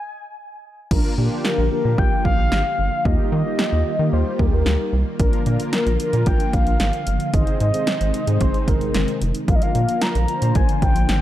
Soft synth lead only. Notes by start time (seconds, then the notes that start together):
Already playing: G#5
1.44 A#4
1.71 A#4
1.98 G5
2.25 F5
3.05 D#5
3.32 D#5
4.13 C5
4.39 A#4
4.46 G#4
4.54 A#4
5.73 A#4
6.00 A#4
6.27 G5
6.54 F5
7.34 D#5
7.61 D#5
8.41 C5
8.68 A#4
9.48 F5
9.55 D#5
9.62 F5
10.02 A#5
10.55 G#5
10.82 G5